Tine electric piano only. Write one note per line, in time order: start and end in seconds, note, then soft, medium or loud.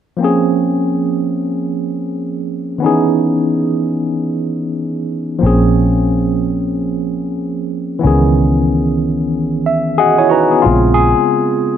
0.17 2.75 F3 medium
0.17 2.76 A#3 soft
0.17 2.77 C4 medium
0.23 2.78 C#4 medium
0.23 2.79 G#4 medium
2.78 2.88 D#3 soft
2.78 5.38 B3 medium
2.78 5.39 C#4 medium
2.84 5.40 E3 medium
2.84 5.40 D#4 medium
2.84 5.41 G#4 medium
5.39 7.97 F3 medium
5.39 7.98 A#3 medium
5.39 7.99 C4 medium
5.44 8.00 C#4 medium
5.44 8.01 G#4 medium
7.99 9.93 E3 medium
7.99 9.94 B3 medium
8.03 9.96 D#3 medium
8.03 9.95 C#4 medium
8.03 9.97 G#4 medium
9.66 9.97 E5 medium
9.98 10.18 F#4 soft
9.98 10.32 G#4 medium
9.98 10.17 D#5 soft
9.98 10.17 F#5 medium
10.18 10.31 E4 soft
10.18 10.31 C#5 medium
10.18 10.31 G#5 medium
10.29 10.50 D#4 soft
10.29 10.64 F#4 medium
10.29 10.50 B4 medium
10.29 10.62 A#5 medium
10.51 10.82 B3 soft
10.51 10.82 G#4 medium
10.62 11.09 C#3 soft
10.62 11.10 G#3 soft
10.62 11.10 C4 medium
10.62 10.93 F4 medium
10.94 11.77 G#4 medium